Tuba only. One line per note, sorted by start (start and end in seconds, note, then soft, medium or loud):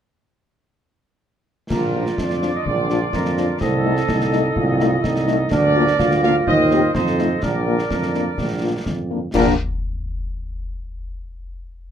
1.70 2.10 A#1 medium
2.18 2.58 F2 medium
2.66 3.05 A#1 medium
3.13 3.53 F2 medium
3.61 4.01 C2 medium
4.08 4.48 C2 medium
4.56 4.96 C2 medium
5.04 5.44 C2 medium
5.51 5.91 D2 medium
5.99 6.39 D2 medium
6.47 6.87 D#2 medium
6.95 7.35 F2 medium
7.43 7.83 A#1 medium
7.90 8.30 F2 medium
8.38 8.78 A#1 medium
8.86 9.26 F2 soft
9.34 9.54 A#1 medium